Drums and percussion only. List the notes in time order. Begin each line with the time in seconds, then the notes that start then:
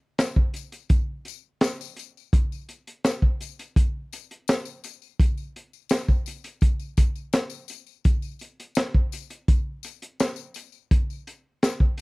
0.18 snare, closed hi-hat, tambourine
0.36 kick
0.54 closed hi-hat, tambourine
0.72 closed hi-hat, tambourine
0.89 kick, closed hi-hat, tambourine
1.25 closed hi-hat, tambourine
1.61 snare, closed hi-hat, tambourine
1.81 tambourine
1.96 closed hi-hat, tambourine
2.17 tambourine
2.33 kick, closed hi-hat, tambourine
2.52 tambourine
2.69 closed hi-hat, tambourine
2.87 closed hi-hat
3.04 snare, closed hi-hat, tambourine
3.22 kick
3.41 closed hi-hat, tambourine
3.59 closed hi-hat, tambourine
3.76 kick, closed hi-hat, tambourine
4.13 closed hi-hat, tambourine
4.31 closed hi-hat
4.48 snare, closed hi-hat, tambourine
4.65 tambourine
4.84 closed hi-hat, tambourine
5.02 tambourine
5.19 kick, closed hi-hat, tambourine
5.38 tambourine
5.56 closed hi-hat
5.73 tambourine
5.89 snare, closed hi-hat, tambourine
6.08 kick, tambourine
6.26 closed hi-hat, tambourine
6.44 closed hi-hat, tambourine
6.61 kick, closed hi-hat, tambourine
6.79 tambourine
6.97 kick, closed hi-hat, tambourine
7.16 tambourine
7.33 snare, closed hi-hat, tambourine
7.50 tambourine
7.68 closed hi-hat, tambourine
7.87 tambourine
8.04 kick, closed hi-hat, tambourine
8.22 tambourine
8.39 closed hi-hat, tambourine
8.60 closed hi-hat
8.75 snare, closed hi-hat, tambourine
8.94 kick
9.12 closed hi-hat, tambourine
9.30 closed hi-hat, tambourine
9.48 kick, closed hi-hat, tambourine
9.83 closed hi-hat, tambourine
10.02 closed hi-hat
10.20 snare, closed hi-hat, tambourine
10.36 tambourine
10.54 closed hi-hat, tambourine
10.72 tambourine
10.91 kick, closed hi-hat, tambourine
11.10 tambourine
11.27 closed hi-hat, tambourine
11.63 snare, closed hi-hat, tambourine
11.80 kick
11.98 closed hi-hat